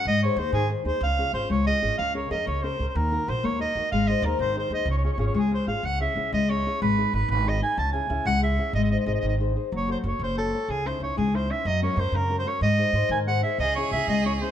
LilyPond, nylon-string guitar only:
\new Staff \with { instrumentName = "Nylon-string guitar" } { \time 6/8 \key des \major \tempo 4. = 124 aes8 <ees' aes' c''>8 <ees' aes' c''>8 ees8 <ees' aes' c''>8 <ees' aes' c''>8 | des8 <des' f' aes'>8 <des' f' aes'>8 aes8 <des' f' aes'>8 <des' f' aes'>8 | des8 <des' aes' bes'>8 <des' aes' bes'>8 des8 <des' aes' bes'>8 <des' aes' bes'>8 | ees8 <ees' ges' bes'>8 <ees' ges' bes'>8 bes8 <ees' ges' bes'>8 <ees' ges' bes'>8 |
aes8 <ees' aes' c''>8 <ees' aes' c''>8 ees8 <ees' aes' c''>8 <ees' aes' c''>8 | des8 <des' f' aes'>8 <des' f' aes'>8 aes8 <des' f' aes'>8 <des' f' aes'>8 | \key cis \minor cis8 <cis' e' gis'>8 <cis' e' gis'>8 gis8 <cis' e' gis'>8 <cis' e' gis'>8 | gis8 <dis' gis' b'>8 <dis' gis' b'>8 dis8 <dis' gis' b'>8 <dis' gis' b'>8 |
cis8 <cis' e' gis'>8 <cis' e' gis'>8 gis8 <cis' e' gis'>8 <cis' e' gis'>8 | gis8 <dis' gis' bis'>8 <dis' gis' bis'>8 dis8 <dis' gis' bis'>8 <dis' gis' bis'>8 | fis8 <fis' a' cis''>8 <fis' a' cis''>8 cis8 <fis' a' cis''>8 <fis' a' cis''>8 | cis8 <cis' dis' e'>8 <cis' dis' e'>8 gis8 <cis' dis' e'>8 <cis' dis' e'>8 |
fis8 <cis' fis' ais'>8 <cis' fis' ais'>8 cis8 <cis' fis' ais'>8 <cis' fis' ais'>8 | gis8 <dis' gis' bis'>8 <dis' gis' bis'>8 dis8 <dis' gis' bis'>8 <dis' gis' bis'>8 | cis8 <cis' e' gis'>8 <cis' e' gis'>8 gis8 <cis' e' gis'>8 <cis' e' gis'>8 | }